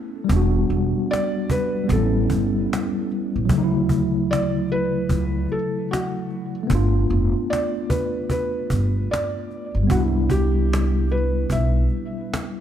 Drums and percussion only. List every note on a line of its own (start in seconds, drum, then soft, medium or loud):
0.29 cajon bass loud
0.71 cajon slap soft
1.13 cajon slap loud
1.50 cajon bass loud
1.89 cajon bass medium
2.30 cajon bass medium
2.73 cajon slap loud
3.10 cajon slap soft
3.49 cajon bass loud
3.89 cajon bass medium
4.33 cajon slap loud
4.68 cajon slap soft
5.09 cajon bass medium
5.48 cajon slap soft
5.93 cajon slap medium
6.30 cajon slap soft
6.70 cajon bass loud
7.11 cajon slap soft
7.53 cajon slap loud
7.90 cajon bass loud
8.30 cajon bass medium
8.70 cajon bass medium
9.13 cajon slap loud
9.51 cajon slap soft
9.90 cajon bass loud
10.30 cajon bass medium
10.73 cajon slap loud
11.09 cajon slap soft
11.50 cajon bass medium
11.89 cajon slap soft
12.34 cajon slap loud